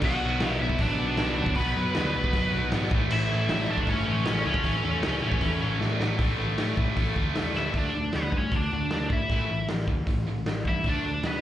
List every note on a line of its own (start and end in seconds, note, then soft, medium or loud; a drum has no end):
0.02 0.19 B1 loud
0.02 0.22 B2 loud
0.02 0.23 F#3 loud
0.02 0.23 B3 loud
0.02 0.58 F#4 medium
0.02 0.50 F#5 loud
0.02 kick loud
0.02 crash loud
0.22 0.40 B1 loud
0.22 0.42 B2 medium
0.22 0.42 F#3 loud
0.22 0.43 B3 loud
0.40 0.58 B1 medium
0.40 0.60 B2 medium
0.40 0.60 F#3 medium
0.40 0.62 B3 loud
0.40 snare loud
0.40 open hi-hat medium
0.50 0.62 E5 loud
0.61 0.78 B1 medium
0.61 0.80 B2 medium
0.61 0.81 F#3 loud
0.61 0.81 B3 loud
0.61 0.80 E4 medium
0.61 0.81 E5 medium
0.70 kick medium
0.78 0.96 A1 medium
0.78 0.98 B2 medium
0.78 0.99 F#3 loud
0.78 0.99 B3 loud
0.78 1.54 D4 medium
0.78 1.58 D5 medium
0.78 kick loud
0.78 open hi-hat medium
0.99 1.16 B1 medium
0.99 1.17 B2 medium
0.99 1.18 F#3 medium
0.99 1.19 B3 loud
1.17 1.35 B1 loud
1.17 1.37 B2 medium
1.17 1.37 F#3 medium
1.17 1.37 B3 loud
1.17 snare loud
1.17 open hi-hat medium
1.37 1.54 D2 loud
1.37 1.56 B2 loud
1.37 1.57 F#3 medium
1.37 1.57 B3 loud
1.46 kick loud
1.55 1.73 B1 loud
1.55 1.75 B2 loud
1.55 1.76 F#3 loud
1.55 1.77 B3 loud
1.55 2.68 B4 medium
1.55 2.68 B5 medium
1.55 kick medium
1.55 open hi-hat medium
1.76 1.93 F#2 loud
1.76 1.95 B2 medium
1.76 1.95 F#3 medium
1.76 1.96 B3 medium
1.95 2.12 D2 medium
1.95 2.15 B2 medium
1.95 2.16 F#3 medium
1.95 2.16 B3 loud
1.95 snare loud
1.95 open hi-hat medium
2.14 2.31 B1 medium
2.14 2.35 B2 medium
2.14 2.35 F#3 medium
2.14 2.35 B3 medium
2.24 kick medium
2.33 2.50 F#2 medium
2.33 2.55 B2 medium
2.33 2.56 F#3 loud
2.33 2.56 B3 loud
2.33 kick loud
2.33 open hi-hat medium
2.53 2.69 B1 medium
2.53 2.74 B2 medium
2.57 2.74 F#3 loud
2.57 2.75 B3 medium
2.72 2.89 G#1 loud
2.72 2.92 B2 medium
2.72 2.92 F#3 medium
2.72 snare loud
2.72 open hi-hat medium
2.76 2.93 B3 loud
2.91 3.08 A1 loud
2.91 3.13 A2 loud
2.91 3.13 E3 loud
2.91 3.14 A3 loud
2.91 kick loud
3.10 3.27 A1 loud
3.10 3.32 A2 loud
3.10 3.32 E3 loud
3.10 3.66 E4 loud
3.10 crash loud
3.14 3.33 A3 loud
3.14 3.73 E5 loud
3.31 3.47 A1 loud
3.31 3.51 A2 medium
3.31 3.51 E3 medium
3.31 3.52 A3 loud
3.49 3.66 A1 medium
3.49 3.70 A2 medium
3.49 3.70 E3 medium
3.49 3.71 A3 loud
3.49 snare loud
3.49 open hi-hat medium
3.69 3.86 A1 medium
3.69 3.89 A2 medium
3.69 3.89 E3 loud
3.69 3.90 A3 loud
3.69 3.88 D4 medium
3.69 3.88 D5 loud
3.78 kick medium
3.87 4.04 G1 medium
3.87 4.07 A2 medium
3.87 4.07 E3 medium
3.87 4.08 A3 medium
3.87 4.43 C#4 medium
3.87 4.43 C#5 loud
3.87 kick loud
3.87 open hi-hat medium
4.08 4.24 A1 medium
4.08 4.26 A2 medium
4.08 4.27 E3 medium
4.08 4.27 A3 medium
4.25 4.43 A1 loud
4.25 4.45 A2 medium
4.25 4.45 E3 medium
4.25 4.46 A3 medium
4.25 snare loud
4.25 open hi-hat medium
4.45 4.63 C#2 loud
4.45 4.62 A2 loud
4.45 4.63 E3 loud
4.45 4.64 A3 loud
4.45 5.78 C#4 medium
4.45 5.78 C#5 medium
4.50 6.02 A3 loud
4.50 kick medium
4.64 4.81 A1 loud
4.64 4.82 A2 loud
4.64 4.83 E3 loud
4.64 4.83 A3 loud
4.64 kick medium
4.64 open hi-hat medium
4.83 5.01 E2 loud
4.83 5.02 A2 medium
4.83 5.02 E3 loud
4.83 5.03 A3 loud
5.03 5.20 C#2 medium
5.03 5.21 A2 medium
5.03 5.23 E3 loud
5.03 5.22 A3 medium
5.03 snare loud
5.03 open hi-hat medium
5.22 5.40 A1 medium
5.22 5.40 A2 medium
5.22 5.41 E3 medium
5.22 5.41 A3 loud
5.32 kick medium
5.41 5.58 E2 medium
5.41 5.59 A2 loud
5.41 5.60 E3 loud
5.41 5.60 A3 medium
5.41 kick medium
5.41 open hi-hat medium
5.60 5.79 A1 medium
5.60 5.80 A2 medium
5.60 5.80 E3 medium
5.60 5.80 A3 medium
5.81 5.98 A1 loud
5.81 6.00 A2 medium
5.81 6.00 E3 medium
5.81 6.01 A3 medium
5.81 snare medium
6.00 6.17 A1 medium
6.00 6.19 A2 medium
6.00 6.19 E3 medium
6.00 6.20 A3 loud
6.00 snare loud
6.19 6.32 A1 medium
6.19 6.38 A2 loud
6.19 6.38 E3 loud
6.19 6.39 A3 loud
6.19 kick loud
6.19 open hi-hat medium
6.39 6.52 A1 loud
6.39 6.57 A2 medium
6.39 6.57 E3 medium
6.39 6.58 A3 medium
6.58 6.72 A1 medium
6.58 6.76 A2 medium
6.58 6.77 E3 medium
6.58 6.77 A3 loud
6.58 snare loud
6.58 open hi-hat medium
6.77 6.91 A1 medium
6.77 6.97 A2 loud
6.77 6.97 E3 medium
6.77 6.98 A3 medium
6.77 kick loud
6.97 7.10 A1 medium
6.97 7.17 A2 loud
6.97 7.17 E3 medium
6.97 7.17 A3 medium
6.97 kick loud
6.97 open hi-hat medium
7.16 7.30 D2 medium
7.16 7.36 A2 medium
7.16 7.36 E3 medium
7.16 7.37 A3 medium
7.16 kick medium
7.35 7.49 E2 loud
7.35 7.55 A2 loud
7.35 7.55 E3 medium
7.35 7.56 A3 loud
7.35 snare loud
7.35 open hi-hat medium
7.55 7.68 D2 medium
7.55 7.74 A2 medium
7.55 7.74 E3 medium
7.55 7.75 A3 loud
7.55 7.74 E4 medium
7.55 7.77 E5 loud
7.55 snare medium
7.73 7.88 D2 medium
7.73 7.94 D3 medium
7.73 7.94 A3 medium
7.73 8.12 D4 medium
7.73 7.94 D4 medium
7.73 kick medium
7.73 open hi-hat soft
7.79 8.15 D5 loud
7.96 8.09 D2 medium
7.96 8.13 D3 medium
7.96 8.13 A3 medium
8.13 8.28 D2 medium
8.13 8.32 D3 medium
8.13 8.33 A3 medium
8.13 8.32 B3 medium
8.13 8.35 B4 medium
8.13 snare loud
8.13 open hi-hat medium
8.32 8.46 G2 medium
8.32 8.52 D3 medium
8.32 8.52 A3 medium
8.32 kick medium
8.37 8.54 C#4 medium
8.37 8.56 C#5 medium
8.52 8.66 D2 medium
8.52 8.70 D3 medium
8.52 8.70 A3 medium
8.52 9.08 D4 medium
8.52 kick loud
8.52 open hi-hat medium
8.56 9.13 D5 medium
8.72 8.86 D2 medium
8.72 8.90 D3 medium
8.72 8.90 A3 medium
8.90 9.05 D2 medium
8.90 9.10 D3 medium
8.90 9.10 A3 medium
8.90 snare loud
8.90 open hi-hat soft
9.09 9.24 G#1 medium
9.09 9.29 D3 medium
9.09 9.29 A3 medium
9.09 9.66 E5 medium
9.09 kick medium
9.13 9.66 E4 medium
9.29 9.43 A1 medium
9.29 9.49 A2 medium
9.29 9.49 E3 medium
9.29 9.49 A3 medium
9.29 kick loud
9.29 open hi-hat soft
9.51 9.64 A1 medium
9.51 9.68 A2 medium
9.51 9.68 E3 medium
9.68 9.84 A1 medium
9.68 9.87 A2 medium
9.68 9.87 E3 medium
9.68 snare loud
9.68 open hi-hat medium
9.88 10.02 D2 medium
9.88 10.06 A2 medium
9.88 10.06 E3 medium
9.88 kick medium
10.07 10.21 A1 medium
10.07 10.25 A2 medium
10.07 10.25 E3 medium
10.07 kick loud
10.07 open hi-hat medium
10.27 10.41 A1 medium
10.27 10.44 A2 medium
10.27 10.45 E3 medium
10.46 10.60 A1 medium
10.46 10.64 A2 medium
10.46 10.64 E3 medium
10.46 snare loud
10.46 open hi-hat soft
10.65 10.79 G2 medium
10.65 10.84 A2 medium
10.65 10.84 E3 medium
10.65 10.85 E4 medium
10.65 10.87 E5 medium
10.65 kick medium
10.84 10.98 D2 medium
10.84 11.04 D3 medium
10.84 11.04 A3 loud
10.84 11.04 D4 loud
10.84 kick loud
10.84 open hi-hat medium
10.89 11.23 D4 medium
10.89 11.27 D5 medium
11.03 11.18 D2 medium
11.03 11.22 D3 medium
11.03 11.22 A3 medium
11.22 11.36 D2 medium
11.22 11.41 D3 medium
11.22 11.41 A3 medium
11.22 snare medium
11.22 open hi-hat medium
11.27 11.41 B3 medium
11.27 11.41 B4 medium